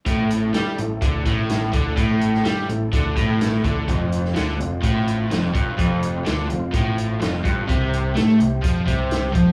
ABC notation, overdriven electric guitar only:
X:1
M:4/4
L:1/8
Q:1/4=126
K:Am
V:1 name="Overdriven electric guitar" clef=bass
A,,2 G, A,, D, A,,2 D, | A,,2 G, A,, D, A,,2 D, | F,,2 D, F,, A,,2 F,, G,, | F,,2 D, F,, A,,2 F,, G,, |
C,2 A, C, F, C,2 F, |]